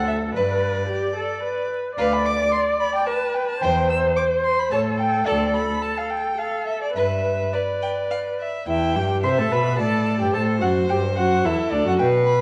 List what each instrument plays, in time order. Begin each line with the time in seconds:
Already playing: cello D2, viola A4
0.07 violin E5
0.35 cello G2, viola B4, violin B4 D5
0.89 viola G4
1.16 viola A4
1.44 viola B4
1.97 cello D2, violin B4 F5, viola D5
2.13 violin B5
2.26 violin D6
2.52 violin C6
2.80 violin B5
2.95 violin G5
3.07 viola B4, violin A5
3.34 violin G5
3.49 violin A5
3.62 cello E2, violin C5 G5, viola C5
3.90 violin E6
4.16 violin D6
4.44 violin C6
4.59 violin B5
4.71 cello A2, viola A4, violin C#5 A5
4.98 violin G5
5.26 cello D2, violin A4 D5
5.54 violin B5
5.82 violin A5
5.98 violin F5
6.10 violin G5
6.38 viola A4, violin F5
6.67 violin E5
6.82 violin D5
6.96 cello G2, violin B4 E5, viola B4
7.53 violin B4 D5
7.82 violin G5
8.11 violin F5
8.40 violin E5
8.67 cello E2, viola E4, violin E5 G5
8.95 cello G2, viola G4, violin G5
9.23 cello C3, viola C5, violin E5 C6
9.38 cello A2, viola A4, violin A5
9.51 cello B2, viola B4, violin B5
9.79 cello A2, viola A4, violin D5 A5
10.20 cello G2, viola G4, violin G5
10.33 cello A2, viola A4, violin C5 A5
10.61 cello F#2, viola F#4, violin F#5
10.89 cello G2, viola G4, violin G5
11.17 cello F#2, viola F#4, violin F#5
11.45 cello E2, viola E4, violin A4 E5
11.72 cello D2, viola D4, violin D5
11.85 cello F#2, viola F#4, violin F#5
11.99 cello B2, violin B4 G5
12.26 violin B5